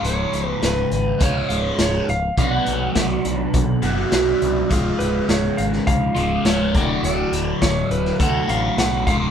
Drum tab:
HH |x-x-x-x-x-x-x-x-|x-x-x-x-x-x-x-x-|x-x-x-x-x-x-x-x-|x-x-x-x-x-x-x-x-|
SD |----o-------o---|----o-------o---|----o--o----o---|----o--o----o---|
BD |--------o-------|o---o---o-------|o-------o-----o-|----o---o-----o-|